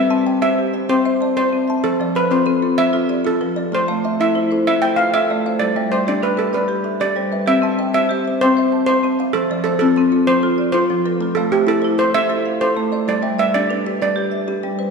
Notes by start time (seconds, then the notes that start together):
Already playing: C4 G4 B4 C5 E5
0.10 C4 A5
0.27 G5
0.42 G4 C5 E5
0.58 G4
0.73 C5 E5
0.89 C4 C5 G5
1.05 C5 E5
1.21 D5 A5
1.37 C5
1.53 C4
1.68 E5 A5
1.84 F3 A4 C5
2.00 F3 D5
2.15 B4 C5
2.31 C4 F4 C5
2.46 C4 A4
2.62 F4 A4
2.77 F3 C5 E5
2.93 F4 A4
3.09 G4 D5
3.25 F4 A4
3.41 F3 B4
3.56 A4 D5
3.72 A3 F4 C5
3.88 A3 F5
4.04 E5
4.20 E4 A4 E5
4.35 E4 C5
4.51 A4 C5
4.67 A3 E5
4.82 A4 C5 G5
4.96 F4 B4 F5
5.14 A4 E5
5.30 A3 D5
5.46 C5 F5
5.59 G3 A4 D5
5.76 G3 E5
5.92 C5 D5
6.07 D4 G4 D5
6.23 D4 B4
6.37 G4 A4 B4
6.53 G3 B4 D5
6.68 G4 B4
6.84 A4 E5
7.00 G4 D5
7.16 G3 C5
7.32 B4 E5
7.46 C4 G4 E5
7.62 C4 A5
7.79 E5 G5
7.94 G4 C5 E5
8.09 G4 E5
8.25 C5 E5
8.41 C4 C5 G5
8.57 C5 E5
8.72 A5
8.86 C5
9.03 C4 C5
9.19 E5 F5
9.33 F3 A4 C5
9.50 F3 D5
9.64 A4 C5
9.79 C4 F4 A4
9.96 C4 A4
10.12 F4 A4
10.27 F3 C5
10.43 F4 A4
10.58 D5
10.72 F4 C5
10.90 F3 F4
11.05 A4 B4
11.21 A3 F4
11.35 A3 A4 F5
11.52 G4 C5 E5
11.67 E4 A4
11.82 E4 C5
11.98 A4 C5
12.14 A3 E5
12.30 A4 C5
12.45 F5
12.61 A4 C5
12.76 A3 A4
12.92 C5 D5
13.08 G3 A4 D5
13.22 G3 E5
13.39 B4 D5 E5
13.54 D4 G4 D5
13.70 D4 B4
13.86 G4 B4
14.02 G3 D5
14.16 G4 B4
14.31 E5
14.47 G4
14.63 G3 G4
14.79 B4 C5